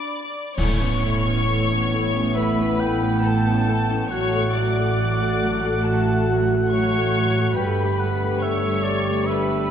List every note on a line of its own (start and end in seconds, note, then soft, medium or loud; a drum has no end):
0.00 0.21 D4 soft
0.00 0.55 D5 medium
0.00 0.22 B5 soft
0.00 0.54 D6 medium
0.57 4.08 A1 medium
0.57 4.07 A2 medium
0.57 0.79 A3 medium
0.57 4.07 B3 medium
0.57 4.07 E4 medium
0.57 0.80 E4 medium
0.57 2.32 C#5 medium
0.57 2.33 C#6 loud
0.57 concert bass drum medium
0.57 crash medium
0.81 1.04 B3 medium
0.81 1.04 C#4 medium
1.03 1.26 A3 medium
1.03 1.26 E4 medium
1.26 1.49 B3 medium
1.26 1.49 C#4 medium
1.49 1.69 A3 medium
1.49 1.69 E4 medium
1.71 1.93 B3 medium
1.71 1.93 C#4 soft
1.93 2.15 A3 medium
1.93 2.15 E4 medium
2.16 2.37 B3 medium
2.16 2.37 C#4 medium
2.34 2.57 A3 medium
2.34 2.58 E4 medium
2.34 3.24 B4 medium
2.34 2.81 E5 medium
2.34 3.25 B5 medium
2.60 2.81 B3 soft
2.60 2.81 C#4 medium
2.80 3.03 A3 medium
2.80 3.03 E4 medium
2.80 4.12 G5 medium
3.04 3.25 B3 medium
3.04 3.25 C#4 medium
3.23 3.45 A3 medium
3.23 3.45 E4 medium
3.23 4.11 A4 medium
3.23 4.12 A5 medium
3.47 3.69 B3 medium
3.47 3.69 C#4 medium
3.69 3.90 A3 soft
3.69 3.91 E4 medium
3.91 4.12 B3 medium
3.91 4.12 C#4 soft
4.10 7.54 A1 medium
4.10 7.54 A2 medium
4.10 4.33 F#3 medium
4.10 7.55 A3 medium
4.10 7.59 F#4 medium
4.10 4.53 C#5 medium
4.10 7.55 F#5 medium
4.10 4.54 C#6 loud
4.14 4.33 F#4 medium
4.35 4.56 A3 soft
4.35 4.56 A4 medium
4.53 5.85 D5 medium
4.53 5.84 D6 medium
4.57 4.78 F#3 medium
4.57 4.78 F#4 medium
4.79 5.00 A3 soft
4.79 5.00 A4 soft
5.02 5.21 F#3 medium
5.02 5.21 F#4 medium
5.23 5.43 A3 soft
5.23 5.43 A4 medium
5.45 5.65 F#3 soft
5.45 5.65 F#4 medium
5.66 5.86 A3 medium
5.66 5.86 A4 soft
5.84 6.06 F#3 medium
5.84 6.07 F#4 medium
5.84 6.29 A4 medium
5.84 6.28 A5 medium
6.09 6.30 A3 medium
6.09 6.29 A4 medium
6.30 6.51 F#3 medium
6.30 6.51 F#4 medium
6.53 6.74 A3 medium
6.53 6.73 A4 medium
6.70 7.54 C#5 medium
6.70 7.53 C#6 loud
6.75 6.94 F#3 medium
6.75 6.94 F#4 medium
6.96 7.17 A3 medium
6.96 7.17 A4 medium
7.17 7.38 F#3 medium
7.17 7.38 F#4 soft
7.39 7.59 A3 medium
7.39 7.59 A4 medium
7.56 9.71 G1 medium
7.56 9.71 G2 medium
7.56 7.79 G3 medium
7.56 9.71 A3 medium
7.56 9.71 G4 medium
7.56 8.41 B4 medium
7.56 8.01 G5 medium
7.56 8.42 B5 medium
7.60 7.79 A4 medium
7.82 8.02 A3 medium
7.82 8.02 G4 soft
8.00 8.23 G3 medium
8.00 8.23 A4 medium
8.00 8.44 F#5 medium
8.23 8.44 A3 soft
8.23 8.44 G4 medium
8.40 8.63 G3 medium
8.40 8.63 A4 medium
8.40 9.28 C#5 medium
8.40 8.85 E5 medium
8.40 9.26 C#6 medium
8.65 8.86 A3 soft
8.65 8.86 G4 soft
8.84 9.07 G3 medium
8.84 9.07 A4 soft
8.84 9.28 D5 medium
9.09 9.29 A3 medium
9.09 9.29 G4 soft
9.27 9.49 G3 medium
9.27 9.49 A4 medium
9.27 9.71 B4 medium
9.27 9.71 E5 medium
9.27 9.71 B5 medium
9.50 9.71 A3 medium
9.50 9.71 G4 medium